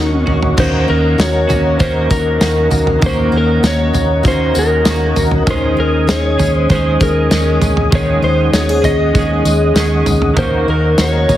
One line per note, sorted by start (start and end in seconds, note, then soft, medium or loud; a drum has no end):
0.00 0.24 D#2 medium
0.00 0.32 D#3 medium
0.00 0.26 A#3 medium
0.00 0.31 A#3 medium
0.00 0.28 C#4 medium
0.00 0.88 C#4 medium
0.00 0.24 D#4 medium
0.00 0.25 F#4 medium
0.00 1.18 F#4 medium
0.00 0.55 A#4 medium
0.00 0.55 D#5 medium
0.00 0.55 F#5 medium
0.00 0.55 C#6 medium
0.26 0.54 D#2 medium
0.26 0.57 A#3 soft
0.26 0.58 C#4 soft
0.26 0.57 F#4 medium
0.26 floor tom medium
0.32 0.57 A#3 soft
0.42 floor tom medium
0.57 0.84 D#2 loud
0.57 1.54 D#3 medium
0.57 2.09 A#3 medium
0.57 1.50 A#3 medium
0.57 1.50 C#4 medium
0.57 1.28 C#4 medium
0.57 5.43 A#4 medium
0.57 0.89 C5 medium
0.57 11.37 D#5 medium
0.57 5.43 F#5 medium
0.57 5.43 A#5 medium
0.57 kick loud
0.57 floor tom loud
0.57 crash loud
0.57 tambourine medium
0.61 1.46 F#4 medium
0.88 1.16 D#2 medium
0.88 1.48 C#4 medium
0.88 1.20 A#4 loud
1.18 1.78 F#4 medium
1.18 1.80 C#5 medium
1.18 snare loud
1.18 tambourine medium
1.48 1.76 D#2 loud
1.48 2.40 C#4 medium
1.48 1.81 C#4 soft
1.48 1.79 F#4 medium
1.48 floor tom medium
1.48 tambourine medium
1.53 1.79 A#3 soft
1.77 2.07 D#2 loud
1.77 2.38 D#3 medium
1.77 2.39 A#3 medium
1.77 3.62 F#4 medium
1.77 2.09 C5 medium
1.77 kick medium
1.77 floor tom medium
1.77 tambourine medium
1.82 2.41 C#4 medium
1.82 2.43 F#4 medium
2.10 2.38 D#2 loud
2.10 2.69 A#3 medium
2.10 2.68 A#4 medium
2.10 kick loud
2.10 tambourine medium
2.38 2.68 D#2 medium
2.38 2.98 D#3 medium
2.38 3.01 A#3 medium
2.38 3.32 C#4 medium
2.38 3.05 C#4 medium
2.38 snare loud
2.38 tambourine medium
2.44 3.04 F#4 medium
2.71 2.99 D#2 medium
2.71 3.00 A#3 medium
2.71 floor tom medium
2.71 tambourine medium
2.87 floor tom medium
2.99 3.29 D#2 loud
2.99 4.23 D#3 medium
2.99 4.53 A#3 medium
2.99 4.24 A#3 medium
2.99 kick loud
2.99 floor tom loud
2.99 tambourine medium
3.05 4.27 C#4 medium
3.05 4.27 F#4 medium
3.05 3.36 C5 medium
3.14 3.82 A#3 medium
3.18 3.83 C#4 medium
3.32 3.59 D#2 medium
3.32 3.93 C#4 medium
3.38 3.67 A#4 loud
3.63 3.90 D#2 medium
3.63 4.22 F#4 medium
3.63 4.27 C#5 loud
3.63 snare loud
3.63 tambourine medium
3.85 4.53 C#4 medium
3.90 4.85 C#4 medium
3.90 4.56 F#4 medium
3.94 4.21 D#2 loud
3.94 floor tom medium
3.94 tambourine medium
4.23 4.52 D#2 loud
4.23 4.84 D#3 medium
4.23 4.85 A#3 medium
4.23 5.53 F#4 medium
4.23 kick medium
4.23 floor tom medium
4.23 tambourine medium
4.27 4.88 C#4 medium
4.27 4.88 F#4 medium
4.27 4.58 C5 medium
4.54 4.83 D#2 loud
4.54 5.15 A#3 medium
4.54 tambourine medium
4.59 5.14 A#4 medium
4.84 5.13 D#2 loud
4.84 5.46 D#3 medium
4.84 5.47 A#3 medium
4.84 snare loud
4.84 tambourine medium
4.88 5.49 C#4 medium
4.88 5.49 F#4 medium
5.16 5.43 D#2 loud
5.16 5.53 A#3 medium
5.16 floor tom medium
5.16 tambourine medium
5.31 floor tom medium
5.38 5.76 D#4 medium
5.46 5.74 D#2 loud
5.46 6.44 D#3 medium
5.46 7.92 D#3 medium
5.46 6.39 G#3 medium
5.46 10.32 C#4 medium
5.46 6.41 C#4 medium
5.46 7.89 G#5 medium
5.46 10.33 D#6 medium
5.46 kick loud
5.46 floor tom loud
5.46 tambourine medium
5.50 6.36 G#4 medium
5.50 5.80 C5 medium
5.77 6.05 D#2 loud
5.77 6.38 C#4 medium
5.77 6.10 A#4 loud
6.07 6.36 D#2 loud
6.07 6.68 G#4 medium
6.07 6.55 C#5 loud
6.07 snare loud
6.07 tambourine medium
6.38 6.66 D#2 loud
6.38 7.31 C#4 medium
6.38 6.71 C#4 soft
6.38 6.69 G#4 medium
6.38 floor tom medium
6.38 tambourine medium
6.44 6.70 G#3 soft
6.55 6.71 C5 loud
6.69 6.97 D#2 medium
6.69 7.29 D#3 medium
6.69 7.31 G#3 medium
6.69 7.33 C#4 medium
6.69 8.53 G#4 medium
6.69 7.02 C5 medium
6.69 kick medium
6.69 floor tom medium
6.69 tambourine medium
6.75 7.34 G#4 medium
7.00 7.28 D#2 loud
7.00 7.60 G#3 medium
7.00 7.59 A#4 medium
7.00 kick loud
7.00 tambourine medium
7.29 7.58 D#2 loud
7.29 7.90 D#3 medium
7.29 7.91 G#3 medium
7.29 8.22 C#4 medium
7.29 snare loud
7.29 tambourine medium
7.34 7.93 C#4 medium
7.34 7.94 G#4 medium
7.62 7.88 D#2 loud
7.62 9.44 G#3 medium
7.62 floor tom medium
7.62 tambourine medium
7.77 floor tom medium
7.91 8.19 D#2 medium
7.91 8.88 D#3 medium
7.91 10.71 D#3 medium
7.91 8.84 G#3 medium
7.91 8.85 C#4 medium
7.91 kick loud
7.91 floor tom loud
7.91 tambourine medium
7.95 8.81 G#4 medium
7.95 8.24 C#5 medium
8.22 8.49 D#2 loud
8.22 8.85 C#4 medium
8.22 8.53 C5 medium
8.52 8.80 D#2 medium
8.52 8.69 F#4 medium
8.52 8.84 C#5 medium
8.52 snare loud
8.52 tambourine medium
8.69 9.14 G#4 medium
8.82 9.10 D#2 loud
8.82 9.76 C#4 medium
8.82 9.15 C#4 soft
8.82 9.14 G#4 medium
8.82 9.72 D#5 loud
8.82 floor tom medium
8.82 tambourine medium
8.88 9.14 G#3 soft
9.13 9.42 D#2 loud
9.13 9.73 D#3 medium
9.13 9.74 G#3 medium
9.13 9.77 C#4 medium
9.13 10.43 G#4 medium
9.13 kick medium
9.13 floor tom medium
9.13 tambourine medium
9.19 9.78 G#4 medium
9.45 9.72 D#2 medium
9.45 10.06 G#3 medium
9.45 tambourine medium
9.74 10.02 D#2 medium
9.74 10.33 D#3 medium
9.74 10.37 G#3 medium
9.74 10.40 C#4 medium
9.74 snare loud
9.74 tambourine medium
9.79 10.39 G#4 medium
10.06 10.33 D#2 medium
10.06 10.36 G#3 medium
10.06 floor tom medium
10.06 tambourine medium
10.22 floor tom medium
10.34 10.64 D#2 loud
10.34 11.37 D#3 medium
10.34 11.37 A#3 medium
10.34 kick loud
10.34 floor tom loud
10.34 tambourine medium
10.38 11.37 C#4 medium
10.38 11.37 A#4 medium
10.38 10.69 C5 medium
10.38 11.37 A#5 medium
10.42 11.37 F#4 medium
10.67 10.94 D#2 loud
10.67 11.28 C#4 medium
10.67 11.00 A#4 medium
10.98 11.25 D#2 loud
10.98 11.37 F#4 medium
10.98 11.37 C#5 medium
10.98 snare loud
10.98 tambourine medium
11.29 11.37 D#2 loud
11.29 11.37 C#4 medium
11.29 floor tom medium
11.29 tambourine medium